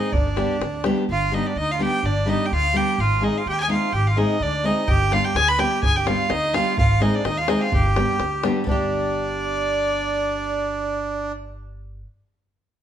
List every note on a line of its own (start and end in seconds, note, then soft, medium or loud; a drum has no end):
0.00 0.13 D#4 medium
0.00 0.14 D#5 medium
0.12 0.41 G1 medium
0.12 0.84 D4 medium
0.12 0.84 D5 medium
0.12 davul low medium
0.27 davul high soft
0.36 0.56 G3 medium
0.36 0.56 B3 medium
0.36 0.56 D4 medium
0.36 0.56 G4 medium
0.36 davul high medium
0.50 davul high soft
0.60 0.89 D2 medium
0.60 davul high medium
0.75 davul high soft
0.84 1.03 G3 medium
0.84 1.04 B3 medium
0.84 1.04 D4 medium
0.84 1.04 G4 medium
0.84 davul high medium
0.98 davul high soft
1.09 1.37 G1 loud
1.09 1.32 F4 medium
1.09 1.35 F5 medium
1.31 1.51 G3 medium
1.31 1.51 B3 medium
1.31 1.51 D4 medium
1.31 1.46 D#4 medium
1.31 1.51 G4 medium
1.31 1.48 D#5 medium
1.46 1.57 D4 medium
1.46 1.59 D5 medium
1.56 1.84 D2 loud
1.56 1.71 D#4 medium
1.56 1.73 D#5 loud
1.72 1.81 F4 medium
1.72 1.84 F5 medium
1.79 1.98 G3 medium
1.79 1.99 B3 medium
1.79 1.99 D4 medium
1.79 1.99 G4 medium
1.79 2.05 G4 medium
1.79 2.07 G5 medium
2.03 2.32 G1 loud
2.03 2.28 D4 medium
2.03 2.30 D5 medium
2.26 2.45 G3 medium
2.26 2.46 B3 medium
2.26 2.46 D4 medium
2.26 2.47 D#4 medium
2.26 2.46 G4 medium
2.26 2.47 D#5 medium
2.46 2.52 G4 medium
2.46 2.54 G5 medium
2.52 2.80 D2 medium
2.52 2.75 F4 medium
2.52 2.78 F5 loud
2.73 2.93 G3 medium
2.73 2.93 B3 medium
2.73 2.94 D4 medium
2.73 2.94 G4 medium
2.73 2.99 G4 medium
2.73 3.02 G5 medium
2.98 3.27 G#1 loud
2.98 3.23 F4 loud
2.98 3.26 F5 medium
3.21 3.41 G#3 medium
3.21 3.41 C4 medium
3.21 3.41 D#4 medium
3.21 3.36 D#4 medium
3.21 3.42 G#4 medium
3.21 3.39 D#5 medium
3.38 3.47 F4 medium
3.38 3.49 F5 medium
3.46 3.74 D#2 medium
3.46 3.60 G4 medium
3.46 3.60 G5 loud
3.61 3.70 G#4 medium
3.61 3.70 G#5 medium
3.68 3.88 G#3 medium
3.68 3.88 C4 medium
3.68 3.88 D#4 medium
3.68 3.89 G#4 medium
3.68 3.94 F5 medium
3.72 3.93 F4 medium
3.93 4.21 G#1 loud
3.93 4.07 G4 loud
3.93 4.09 G5 medium
4.07 4.19 F4 medium
4.07 4.19 F5 medium
4.16 4.35 G#3 medium
4.16 4.36 C4 medium
4.16 4.36 D#4 medium
4.16 4.41 D#4 medium
4.16 4.36 G#4 medium
4.16 4.44 D#5 medium
4.40 4.69 D2 loud
4.40 4.65 D4 medium
4.40 4.67 D5 loud
4.63 4.83 G#3 medium
4.63 4.83 C4 medium
4.63 4.88 D#4 medium
4.63 4.84 D#4 medium
4.63 4.84 G#4 medium
4.63 4.90 D#5 medium
4.88 5.17 G1 loud
4.88 5.12 G4 loud
4.88 5.14 G5 loud
4.88 davul low medium
5.02 davul high soft
5.11 5.30 G3 medium
5.11 5.31 B3 medium
5.11 5.31 D4 medium
5.11 5.26 F4 medium
5.11 5.31 G4 medium
5.11 5.26 F5 loud
5.11 davul high medium
5.25 5.36 G4 medium
5.25 5.38 G5 loud
5.35 5.63 D2 medium
5.35 5.49 G#4 medium
5.35 5.50 G#5 loud
5.35 davul high medium
5.49 5.60 B4 loud
5.49 5.61 B5 loud
5.58 5.78 G3 medium
5.58 5.78 B3 medium
5.58 5.78 D4 medium
5.58 5.78 G4 medium
5.58 5.84 G4 medium
5.58 5.83 G5 loud
5.58 davul high medium
5.83 6.12 G1 medium
5.83 5.96 G#4 loud
5.83 5.98 G#5 loud
5.83 davul low loud
5.96 6.08 G4 medium
5.96 6.08 G5 medium
5.96 davul high soft
6.06 6.25 G3 medium
6.06 6.25 B3 medium
6.06 6.26 D4 medium
6.06 6.31 F4 medium
6.06 6.26 G4 medium
6.06 6.32 F5 medium
6.06 davul high medium
6.30 6.59 D2 medium
6.30 6.54 D#4 medium
6.30 6.56 D#5 loud
6.30 davul high medium
6.44 davul high soft
6.53 6.73 G3 medium
6.53 6.73 B3 medium
6.53 6.73 D4 medium
6.53 6.77 F4 medium
6.53 6.74 G4 medium
6.53 6.78 F5 loud
6.53 davul high medium
6.77 7.06 G#1 loud
6.77 7.00 F4 loud
6.77 7.03 F5 medium
6.77 davul low loud
6.92 davul high soft
7.00 7.20 G#3 medium
7.00 7.20 C4 medium
7.00 7.20 D#4 medium
7.00 7.15 D#4 medium
7.00 7.21 G#4 medium
7.00 7.17 D#5 medium
7.00 davul high medium
7.15 7.26 D4 medium
7.15 7.26 D5 medium
7.25 7.54 D#2 medium
7.25 7.40 D#4 medium
7.25 7.39 D#5 loud
7.25 davul high medium
7.37 7.50 F4 medium
7.37 7.51 F5 medium
7.37 davul high soft
7.48 7.67 G#3 medium
7.48 7.68 C4 medium
7.48 7.68 D#4 medium
7.48 7.59 D#4 medium
7.48 7.68 G#4 medium
7.48 7.60 D#5 medium
7.48 davul high medium
7.58 7.62 G4 soft
7.58 7.74 F5 loud
7.58 7.63 G5 medium
7.63 7.73 F4 medium
7.72 8.01 G1 loud
7.72 8.44 G4 medium
7.72 8.44 G5 medium
7.72 davul low loud
7.86 davul high soft
7.96 8.15 G3 medium
7.96 8.15 B3 medium
7.96 8.15 D4 medium
7.96 8.16 G4 medium
7.96 davul high medium
8.19 8.48 D2 medium
8.19 davul high medium
8.43 8.62 G3 medium
8.43 8.62 B3 medium
8.43 8.63 D4 medium
8.43 8.63 G4 medium
8.43 davul high medium
8.57 davul high soft
8.64 12.02 G1 medium
8.64 12.01 G3 medium
8.64 8.68 B3 medium
8.64 11.32 D4 medium
8.64 davul low medium
8.68 12.03 D4 medium
8.68 12.04 G4 loud
8.68 11.33 D5 medium